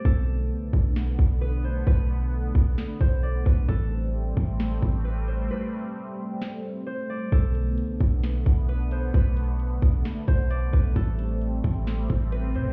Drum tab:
HH |--------|--------|--------|--------|
SD |----o---|----o---|----o---|----o---|
BD |o--o-o--|o--o-o-o|o--o-o--|--------|

HH |xxxxxxxx|xxxxxxxx|xxxxxxxx|
SD |----o---|----o---|----o---|
BD |o--o-o--|o--o-o-o|o--o-o--|